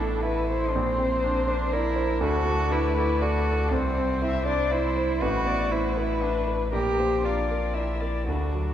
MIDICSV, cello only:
0, 0, Header, 1, 2, 480
1, 0, Start_track
1, 0, Tempo, 497925
1, 713, Time_signature, 3, 2, 24, 8
1, 5507, Tempo, 505902
1, 6947, Tempo, 525394
1, 8324, End_track
2, 0, Start_track
2, 0, Title_t, "Cello"
2, 0, Program_c, 0, 42
2, 0, Note_on_c, 0, 62, 76
2, 214, Note_on_c, 0, 64, 78
2, 229, Note_off_c, 0, 62, 0
2, 718, Note_on_c, 0, 60, 90
2, 733, Note_off_c, 0, 64, 0
2, 1429, Note_on_c, 0, 62, 87
2, 1443, Note_off_c, 0, 60, 0
2, 1667, Note_on_c, 0, 64, 97
2, 1682, Note_off_c, 0, 62, 0
2, 2139, Note_off_c, 0, 64, 0
2, 2158, Note_on_c, 0, 66, 106
2, 2623, Note_on_c, 0, 64, 93
2, 2637, Note_off_c, 0, 66, 0
2, 2862, Note_off_c, 0, 64, 0
2, 2866, Note_on_c, 0, 64, 92
2, 3100, Note_on_c, 0, 66, 86
2, 3114, Note_off_c, 0, 64, 0
2, 3579, Note_on_c, 0, 60, 101
2, 3594, Note_off_c, 0, 66, 0
2, 4294, Note_off_c, 0, 60, 0
2, 4300, Note_on_c, 0, 62, 93
2, 4539, Note_on_c, 0, 64, 94
2, 4553, Note_off_c, 0, 62, 0
2, 5026, Note_on_c, 0, 66, 104
2, 5041, Note_off_c, 0, 64, 0
2, 5503, Note_on_c, 0, 64, 86
2, 5517, Note_off_c, 0, 66, 0
2, 5999, Note_on_c, 0, 62, 74
2, 6013, Note_off_c, 0, 64, 0
2, 6230, Note_off_c, 0, 62, 0
2, 6475, Note_on_c, 0, 67, 94
2, 6960, Note_on_c, 0, 65, 68
2, 6974, Note_off_c, 0, 67, 0
2, 7412, Note_on_c, 0, 64, 63
2, 7426, Note_off_c, 0, 65, 0
2, 7909, Note_on_c, 0, 62, 55
2, 7922, Note_off_c, 0, 64, 0
2, 8324, Note_off_c, 0, 62, 0
2, 8324, End_track
0, 0, End_of_file